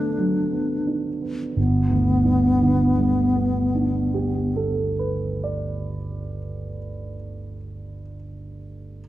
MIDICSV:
0, 0, Header, 1, 3, 480
1, 0, Start_track
1, 0, Key_signature, 1, "major"
1, 0, Tempo, 1369863
1, 547, Time_signature, 4, 2, 24, 8
1, 547, Tempo, 1298701
1, 1027, Tempo, 1255230
1, 1987, Tempo, 1324503
1, 3334, End_track
2, 0, Start_track
2, 0, Title_t, "Alto flute"
2, 0, Program_c, 0, 73
2, 0, Note_on_c, 0, 62, 52
2, 305, Note_off_c, 0, 62, 0
2, 543, Note_on_c, 0, 59, 39
2, 1677, Note_off_c, 0, 59, 0
2, 3334, End_track
3, 0, Start_track
3, 0, Title_t, "Grand piano"
3, 0, Program_c, 1, 0
3, 0, Control_c, 1, 64, 127
3, 0, Note_on_c, 1, 50, 27
3, 0, Note_on_c, 1, 54, 25
3, 0, Note_on_c, 1, 57, 24
3, 0, Note_on_c, 1, 59, 23
3, 0, Note_on_c, 1, 62, 30
3, 64, Note_off_c, 1, 54, 0
3, 64, Note_on_c, 1, 54, 27
3, 133, Note_off_c, 1, 57, 0
3, 182, Note_off_c, 1, 59, 0
3, 182, Note_on_c, 1, 59, 23
3, 254, Note_off_c, 1, 54, 0
3, 305, Note_off_c, 1, 62, 0
3, 305, Note_on_c, 1, 62, 22
3, 380, Note_off_c, 1, 59, 0
3, 427, Note_on_c, 1, 59, 20
3, 501, Note_off_c, 1, 62, 0
3, 546, Note_off_c, 1, 59, 0
3, 548, Note_on_c, 1, 31, 27
3, 556, Control_c, 1, 64, 0
3, 560, Note_off_c, 1, 50, 0
3, 637, Control_c, 1, 64, 127
3, 671, Note_on_c, 1, 38, 27
3, 801, Note_on_c, 1, 43, 25
3, 937, Note_on_c, 1, 50, 23
3, 1070, Note_on_c, 1, 55, 23
3, 1218, Note_on_c, 1, 59, 24
3, 1368, Note_on_c, 1, 62, 21
3, 1517, Note_on_c, 1, 67, 24
3, 1679, Note_on_c, 1, 69, 22
3, 1682, Note_off_c, 1, 31, 0
3, 1809, Note_off_c, 1, 38, 0
3, 1842, Note_on_c, 1, 71, 20
3, 1943, Note_off_c, 1, 43, 0
3, 2011, Note_on_c, 1, 74, 22
3, 2080, Note_off_c, 1, 50, 0
3, 2209, Note_off_c, 1, 55, 0
3, 2348, Note_off_c, 1, 59, 0
3, 2491, Note_off_c, 1, 62, 0
3, 2632, Note_off_c, 1, 67, 0
3, 2785, Note_off_c, 1, 69, 0
3, 2940, Note_off_c, 1, 71, 0
3, 2994, Note_off_c, 1, 74, 0
3, 3303, Control_c, 1, 64, 0
3, 3334, End_track
0, 0, End_of_file